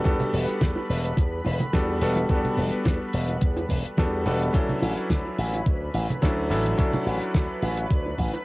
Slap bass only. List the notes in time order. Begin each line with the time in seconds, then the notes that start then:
0.05 E2
0.34 E1
0.61 E2
0.90 E1
1.18 E2
1.46 E1
1.73 E2
2.01 E1
2.30 E2
2.58 E1
2.73 muted slap bass stroke
2.86 E2
3.14 E1
3.42 E2
3.70 E1
3.85 muted slap bass stroke
3.98 E2
4.26 E1
4.54 D2
4.82 A1
4.97 muted slap bass stroke
5.10 D2
5.38 A1
5.66 D2
5.94 A1
6.22 D2
6.50 A1
6.78 D2
7.06 A1
7.34 D2
7.62 A1
7.91 D2
8.18 A1